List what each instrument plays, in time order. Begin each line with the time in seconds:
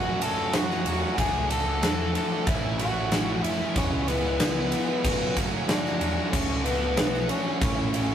Already playing: picked electric bass F#1, distorted electric guitar F#3, lead electric guitar F#4 F#5
0.05 distorted electric guitar A3 C#4 F#4
0.22 distorted electric guitar F#3 A3 C#4 F#4, lead electric guitar A4 A5, ride
0.38 distorted electric guitar A3 C#4 F#4
0.53 distorted electric guitar F#3 A3 C#4 F#4, lead electric guitar F#4 F#5, snare, ride
0.69 distorted electric guitar A3 C#4 F#4, snare
0.85 picked electric bass E2, distorted electric guitar F#3 A3 C#4 F#4, ride
1.02 distorted electric guitar A3 C#4 F#4
1.18 picked electric bass D2, distorted electric guitar D3 A3 D4 F#4, lead electric guitar G#4 G#5, kick, ride
1.33 picked electric bass C#2
1.50 distorted electric guitar D3 A3 D4 F#4, lead electric guitar A4 A5, ride
1.65 picked electric bass C#2, distorted electric guitar A3 D4 F#4
1.82 picked electric bass E2, distorted electric guitar D3 A3 D4 F#4, snare, ride
1.99 distorted electric guitar A3 D4 F#4
2.14 distorted electric guitar D3 A3 D4 F#4, lead electric guitar A4 A5, ride
2.30 distorted electric guitar A3 D4 F#4, muted distorted electric guitar stroke
2.46 picked electric bass A1, distorted electric guitar A2 E3 A3 C#4 E4, lead electric guitar E4 E5, kick, ride
2.62 distorted electric guitar A3 C#4 E4
2.78 distorted electric guitar E3 A3 C#4 E4, lead electric guitar F#4 F#5, ride
2.95 distorted electric guitar A3 C#4 E4
3.11 distorted electric guitar A2 E3 A3 C#4 E4, snare, ride
3.28 distorted electric guitar A3 C#4 E4
3.42 picked electric bass F#1, distorted electric guitar E3 A3 C#4 E4, lead electric guitar E4 E5, ride
3.60 distorted electric guitar A3 C#4 E4
3.75 picked electric bass E1, distorted electric guitar E3 G#3 B3 E4, lead electric guitar C#4 C#5, kick, ride
3.92 picked electric bass C#2
4.08 distorted electric guitar E3 G#3 B3 E4, lead electric guitar B3 B4, ride
4.24 picked electric bass C#2, distorted electric guitar G#3 B3 E4
4.40 picked electric bass C#2, distorted electric guitar E3 G#3 B3 E4, snare, ride
4.55 distorted electric guitar G#3 B3 E4
4.72 distorted electric guitar E3 G#3 B3 E4, ride
4.87 distorted electric guitar G#3 B3 E4, muted distorted electric guitar stroke
5.03 picked electric bass F#1, distorted electric guitar F#3 A3 C#4 F#4, kick, ride
5.19 distorted electric guitar A3 C#4 F#4
5.35 distorted electric guitar F#3 A3 C#4 F#4, kick, ride
5.52 distorted electric guitar A3 C#4 F#4
5.68 distorted electric guitar F#3 A3 C#4 F#4, lead electric guitar D4 D5, snare, ride
5.84 distorted electric guitar A3 C#4 F#4, snare
6.01 picked electric bass E2, distorted electric guitar F#3 A3 C#4 F#4, ride
6.17 distorted electric guitar A3 C#4 F#4
6.32 picked electric bass D2, distorted electric guitar D3 A3 D4 F#4, lead electric guitar C#4 C#5, kick, crash
6.50 picked electric bass C#2
6.65 distorted electric guitar D3 A3 D4 F#4, lead electric guitar B3 B4, ride
6.81 picked electric bass C#2, distorted electric guitar A3 D4 F#4
6.97 picked electric bass B1, distorted electric guitar D3 A3 D4 F#4, snare, ride
7.14 distorted electric guitar A3 D4 F#4, snare
7.29 distorted electric guitar D3 A3 D4 F#4, lead electric guitar C#4 C#5, ride
7.46 distorted electric guitar A3 D4 F#4, muted distorted electric guitar stroke
7.61 picked electric bass A1, distorted electric guitar A2 E3 A3 C#4 E4, kick, ride
7.78 distorted electric guitar A3 C#4 E4
7.93 distorted electric guitar E3 A3 C#4 E4, ride
8.09 distorted electric guitar A3 C#4 E4